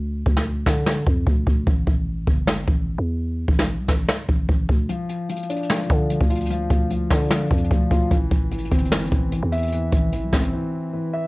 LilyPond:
<<
  \new Staff \with { instrumentName = "Grand piano" } { \clef bass \time 4/4 \key a \phrygian \tempo 4 = 149 r1 | r1 | r1 | f4 f8 d'8 f4 f8 f'8 |
f4 f8 d'8 f4 f8 f'8 | e4 e8 c'8 e4 e8 e''8 | e4 e8 c'8 e4 e8 e''8 | }
  \new Staff \with { instrumentName = "808-style bass" } { \clef bass \time 4/4 \key a \phrygian d,8 d,4 d4 f,8 d,8 d,8 | a,,8 a,,4 g,,4 a,,8. e,8.~ | e,8 a,,8. c,16 a,,8 r8 a,,8 a,,8 d,8 | r2 r8 d8. d,8.~ |
d,8 d,4 d4 f,8 d,8 d,8 | a,,8 a,,4 g,,4 a,,8. e,8.~ | e,8 a,,8. c,16 a,,8 r2 | }
  \new DrumStaff \with { instrumentName = "Drums" } \drummode { \time 4/4 r8 bd16 sn16 r8 <bd sn>8 sn8 bd8 bd8 bd8 | bd8 bd8 r8 bd8 sn8 bd8 r4 | r8 bd16 sn16 r8 <bd sn>8 sn8 bd8 bd8 bd8 | hh8 hh8 \tuplet 3/2 { hh16 hh16 hh16 hh16 hh16 hh16 sn16 hh16 hh16 <hh bd>16 r16 r16 } hh16 bd16 hh32 hh32 hh32 hh32 |
hh8 <hh bd>8 hh8 <hho bd sn>8 \tuplet 3/2 { <hhp sn>16 r16 r16 <hh bd>16 hh16 hh16 } <hh bd>8 <hh bd>8 | <hh bd>8 <hh bd>8 \tuplet 3/2 { hh16 hh16 hh16 <hh bd>16 hh16 hh16 sn16 hh16 hh16 <hh bd>16 r16 r16 } hh8 hh32 hh32 hh32 hh32 | hh8 <hh bd>8 hh8 <bd sn>16 hh16 r4 r4 | }
>>